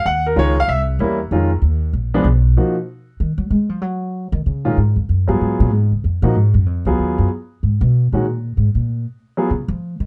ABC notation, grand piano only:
X:1
M:4/4
L:1/8
Q:"Swing" 1/4=190
K:Ebm
V:1 name="Grand piano"
g B [E,A,DFd] f =e z [=G,B,D=E] z | [E,A,DF] z4 [F,A,C=D] z2 | [F,B,EG] z6 z | z4 z [E,A,DF] z2 |
z [G,CFA]3 z3 [F,B,EG] | z3 [G,CFA]3 z2 | z3 [E,A,DG] z4 | z3 [G,CFA] z4 |]